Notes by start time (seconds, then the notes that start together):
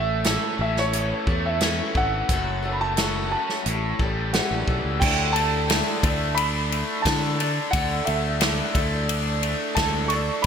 Already playing: A1 A2 A3 C#4 E4 A4 E5
0.24 A2 E3 A3 C#4 E4 A4, snare, closed hi-hat
0.59 A1 C#4 E5
0.77 C#5, snare
0.93 E3 A3 C#4 E4 A4, closed hi-hat
1.27 E2 A3 C#4 E4 A4, kick
1.46 E5
1.60 A2 E3 A3 C#4 E4 A4, snare, closed hi-hat
1.95 G#1 E3 A3 C#4 E4 A4 F#5, kick
2.29 F#1 F#2 F#3 A3 C#4 F#4 A4, kick, closed hi-hat
2.63 A3 C#4 F#4 A4
2.73 B5
2.81 A5
2.97 F#3 A3 C#4 F#4 A4, snare, closed hi-hat
3.32 C#4 A5
3.49 snare
3.66 A1 A2 G3 C#4 E4 A4, closed hi-hat
3.99 A1 G3 C#4 E4 A4, kick
4.33 A2 E3 G3 C#4 E4 A4 F#5, snare, closed hi-hat
4.51 A1
4.67 B1 E3 G3 C#4 E4 A4, kick
4.85 C#2
5.00 D2 D3 A3 D4 E4 A4 G5, kick, crash
5.33 A3 A5, ride
5.68 D3 A3 D4 E4 A4, snare, ride
6.03 D2 A3 E4 A4, kick, ride
6.07 D4
6.35 D4 B5, ride
6.71 A3, ride
7.02 D3 A3 A5, kick, ride
7.07 D4 E4 A4, snare
7.39 D4 E4 A4, ride
7.71 D2 D3 A3 D4 E4 F#5, kick, ride
7.75 A4
8.05 D2 A3 E5, ride
8.41 D3 A3 D4 E4 A4, snare, ride
8.74 D2 A3 D4 E4 A4, kick, ride
9.09 D4, ride
9.43 A3, ride
9.75 D2 D3 A3 D4 E4 A5, kick, snare, ride
9.79 A4
10.08 D4 E4 A4 C#6, ride
10.14 D4
10.42 B5